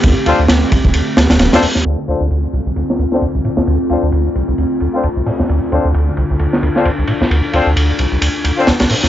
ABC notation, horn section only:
X:1
M:4/4
L:1/16
Q:"Swing 16ths" 1/4=132
K:Dm
V:1 name="Horn section"
z2 [CDFAc] z8 z2 [CDFAc] z2 | z2 [CDFAc] z8 [CDFAc] z4 | z2 [CDFAc] z8 [CDFAc] z4 | z2 [CDFAc] z8 [CDFAc] z4 |
z2 [CDFAc] z8 [CDFAc] z4 |]